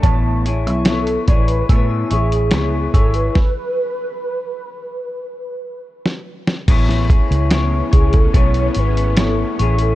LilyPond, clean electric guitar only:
\new Staff \with { instrumentName = "Clean electric guitar" } { \time 4/4 \key a \major \tempo 4 = 72 <a b e' cis''>8 <e' gis' cis''>8 <b e' cis''>8 <e' gis' cis''>8 <a b e' gis' cis''>8 <e' gis' cis''>8 <b e' gis' cis''>8 <e' gis' cis''>8 | r1 | <a b e' gis' cis''>8 <e' gis' cis''>8 <b e' gis' cis''>8 <e' gis' cis''>8 <a b e' gis' cis''>8 <e' gis' cis''>8 <b e' cis''>8 <e' gis' cis''>8 | }